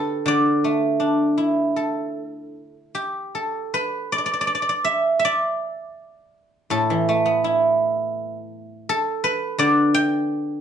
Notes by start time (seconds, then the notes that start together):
Already playing: D3 A3 B3 D4 E4 G4 A4 B4 D5
0.26 D3 D5
0.64 A3
1.00 D4
1.38 E4
1.76 A4 C#5
2.04 C5
2.30 B4
2.95 G4
3.35 A4
3.74 B4
4.12 D5
4.18 D5
4.26 D5
4.34 D5
4.41 D5
4.47 D5
4.55 D5
4.62 D5
4.69 D5
4.85 E5
5.19 E5
5.25 D5
6.70 A2 A4
6.90 E3
7.09 A3
7.25 B3
7.44 E4
8.89 A4
9.24 B4
9.59 D3 D5
9.94 G5